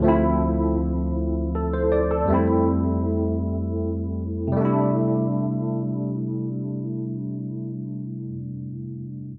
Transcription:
0.00 2.23 D2 medium
0.00 2.24 F3 medium
0.00 2.25 A3 medium
0.06 2.26 C4 medium
0.06 2.28 E4 medium
1.55 1.72 A4 soft
1.74 1.91 C5 medium
1.92 2.09 D5 medium
2.11 2.46 A4 medium
2.25 4.49 F2 medium
2.25 4.50 G3 medium
2.30 4.52 A3 medium
2.30 4.53 C4 medium
2.34 4.54 E4 medium
4.47 8.24 C3 medium
4.52 8.26 G3 medium
4.56 8.28 A3 medium
4.61 8.30 D4 medium
4.65 8.32 E4 medium

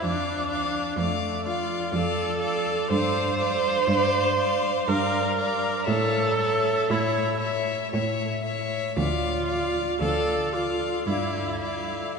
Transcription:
0.01 0.84 F2 medium
0.01 1.01 D4 medium
0.01 0.48 D5 soft
0.01 0.49 F5 soft
0.49 0.95 D5 soft
0.49 0.97 F5 soft
0.96 1.79 F2 medium
0.96 1.47 A3 medium
0.96 1.43 D5 soft
0.96 1.45 F5 soft
1.45 1.96 F4 medium
1.45 1.92 D5 soft
1.45 1.93 F5 soft
1.92 2.76 F2 medium
1.92 2.90 A4 medium
1.92 2.40 D5 soft
1.92 2.41 F5 soft
2.42 2.90 D5 soft
2.42 2.90 F5 soft
2.90 3.74 G2 medium
2.90 4.89 C5 medium
2.90 3.37 D5 soft
2.90 3.39 F5 soft
3.38 3.86 D5 soft
3.38 3.88 F5 soft
3.86 4.73 G2 medium
3.86 4.36 D5 medium
3.90 4.38 F5 soft
4.36 4.86 D5 soft
4.36 4.87 F5 soft
4.87 5.73 G2 medium
4.87 5.87 A#4 medium
4.87 5.35 D5 soft
4.87 5.37 F5 medium
5.38 5.85 D5 soft
5.38 5.85 F5 soft
5.85 6.76 A2 medium
5.85 6.92 A4 medium
5.85 6.36 C#5 medium
5.85 6.36 E5 medium
6.38 6.89 C#5 soft
6.38 6.89 E5 soft
6.90 7.79 A2 medium
6.90 7.42 E4 medium
6.90 7.40 C#5 medium
6.90 7.40 E5 soft
7.40 7.92 C#5 soft
7.40 7.92 E5 soft
7.92 8.83 A2 medium
7.92 8.44 C#5 soft
7.92 8.43 E5 soft
8.44 8.96 C#5 soft
8.44 8.95 E5 soft
8.97 9.86 D2 medium
8.97 9.97 F4 medium
8.97 9.47 D5 soft
8.97 9.47 F5 medium
9.47 9.99 D5 soft
9.47 9.99 F5 soft
10.00 10.92 D2 medium
10.00 10.55 A4 medium
10.00 10.53 D5 soft
10.00 10.52 F5 soft
10.52 11.08 F4 medium
10.52 11.06 D5 soft
10.52 11.05 F5 soft
11.06 12.03 G2 medium
11.06 12.18 E4 medium
11.06 11.61 D5 soft
11.06 11.61 F5 soft
11.62 12.17 D5 soft
11.62 12.17 F5 soft

